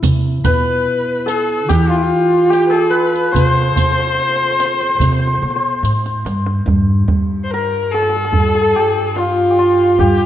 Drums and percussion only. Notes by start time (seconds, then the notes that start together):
0.03 riq, tombak dum
0.25 tombak ka
0.45 riq, tombak dum
0.87 tombak ka
1.28 riq, tombak tek
1.49 tombak ka
1.69 riq, tombak dum
2.53 riq, tombak tek
2.74 riq, tombak ka
2.95 tombak ka
3.15 riq, tombak ka
3.36 riq, tombak dum
3.57 riq, tombak ka
3.77 riq, tombak dum
4.18 riq, tombak ka
4.60 riq, tombak tek
4.81 riq, tombak ka
5.01 riq, tombak dum
5.85 riq, tombak tek
6.06 riq, tombak ka
6.26 riq, tombak tek
6.46 tombak ka
6.68 tombak dum
7.08 tombak dum
8.12 tombak ka
8.33 tombak dum
9.16 tombak tek
9.37 tombak ka
9.78 tombak ka
9.99 tombak dum